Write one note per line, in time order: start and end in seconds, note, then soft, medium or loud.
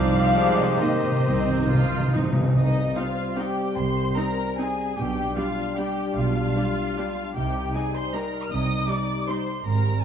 0.00 0.27 C2 medium
0.00 2.32 D#3 medium
0.00 0.82 F3 loud
0.00 2.32 C4 medium
0.00 2.31 D#4 medium
0.00 2.31 G4 medium
0.00 2.35 C5 medium
0.00 0.82 D5 medium
0.00 0.81 F5 loud
0.00 0.82 F5 loud
0.05 0.13 C3 soft
0.14 0.22 C3 soft
0.23 0.31 C3 soft
0.34 0.78 G#3 medium
0.50 0.58 C3 soft
0.59 0.67 C3 medium
0.68 0.76 C3 medium
0.77 0.84 C3 medium
0.81 2.13 D#3 medium
0.81 1.26 A#3 medium
0.81 2.14 C5 medium
0.81 2.11 D#5 medium
0.81 2.14 D#5 medium
0.86 0.93 C3 medium
0.95 1.02 C3 medium
1.03 1.10 C3 medium
1.12 1.18 C3 medium
1.19 1.26 C3 medium
1.26 1.61 C2 medium
1.26 1.34 C3 medium
1.26 1.69 C4 medium
1.35 1.41 C3 medium
1.43 1.49 C3 medium
1.50 1.57 C3 medium
1.58 1.65 C3 medium
1.67 1.73 C3 medium
1.67 2.13 F4 medium
1.74 1.81 C3 medium
1.82 1.90 C3 medium
1.91 1.98 C3 medium
1.99 2.07 C3 medium
2.08 2.15 C3 loud
2.13 2.23 C3 loud
2.13 2.55 D#4 medium
2.24 2.31 C3 loud
2.33 2.40 C3 loud
2.41 2.47 C3 loud
2.48 2.54 C3 loud
2.55 2.88 C2 medium
2.55 2.89 C2 medium
2.55 3.13 C3 medium
2.55 4.93 G3 medium
2.55 4.93 C4 medium
2.55 2.93 D#4 medium
2.55 2.93 D#5 medium
2.96 3.04 C4 medium
2.96 3.04 D#4 medium
2.96 3.38 F4 medium
2.96 3.38 F5 medium
3.38 3.46 C4 medium
3.38 3.46 D#4 medium
3.38 3.77 G4 medium
3.38 3.77 G5 medium
3.76 4.09 C2 medium
3.76 4.10 C2 medium
3.76 4.15 C5 medium
3.76 4.16 C6 medium
4.15 4.25 C4 medium
4.15 4.24 D#4 medium
4.15 4.57 A#4 medium
4.15 4.58 A#5 medium
4.58 4.66 C4 medium
4.58 4.66 D#4 medium
4.58 4.97 G#4 medium
4.58 4.96 G#5 medium
4.96 5.30 B1 medium
4.96 5.30 B2 medium
4.96 7.31 G3 medium
4.96 7.31 D4 medium
4.96 5.36 G4 medium
4.96 5.37 G5 medium
5.36 5.45 G3 medium
5.36 5.45 D4 medium
5.36 5.77 F4 medium
5.36 5.77 F5 medium
5.77 5.85 G3 soft
5.77 5.85 D4 soft
5.77 6.15 G4 medium
5.77 6.16 G5 medium
6.16 6.49 B1 medium
6.16 6.49 B2 medium
6.16 7.35 F4 medium
6.16 7.33 F5 medium
6.56 6.64 G3 medium
6.56 6.64 D4 medium
6.97 7.05 G3 medium
6.97 7.05 D4 soft
7.35 7.67 C2 medium
7.35 7.67 C3 medium
7.35 9.48 G3 medium
7.35 9.48 D#4 medium
7.35 7.74 G4 medium
7.35 7.73 G5 medium
7.74 7.83 G3 medium
7.74 7.82 D#4 medium
7.74 7.95 G#4 medium
7.74 7.94 G#5 medium
7.94 8.14 C5 medium
7.94 8.14 C6 medium
8.14 8.22 G3 medium
8.14 8.22 D#4 soft
8.14 8.51 A#4 medium
8.14 8.44 A#5 medium
8.44 8.50 F6 medium
8.50 8.82 C2 medium
8.50 8.81 C3 medium
8.50 8.88 D#5 medium
8.50 8.88 D#6 medium
8.89 8.97 G3 medium
8.89 8.97 D#4 medium
8.89 9.28 D5 medium
8.89 9.28 D6 medium
9.27 9.35 G3 soft
9.27 9.36 D#4 soft
9.27 9.66 C5 medium
9.27 9.65 C6 medium
9.65 9.97 G#1 medium
9.65 9.96 G#2 medium
9.65 10.04 G3 medium
9.65 10.04 C4 medium
9.65 10.03 A#4 medium
9.65 10.03 A#5 medium